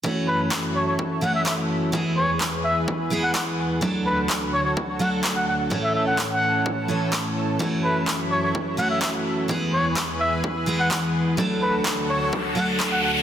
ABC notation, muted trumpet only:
X:1
M:4/4
L:1/16
Q:1/4=127
K:F#m
V:1 name="Muted trumpet"
z2 B z3 c c z2 f e e z3 | z2 c z3 e z4 f f z3 | z2 B z3 c c z2 f z2 f f z | z e e f z f3 z8 |
z2 B z3 c c z2 f e e z3 | z2 c z3 e z4 f f z3 | z2 B z3 c c z2 f z2 f f z |]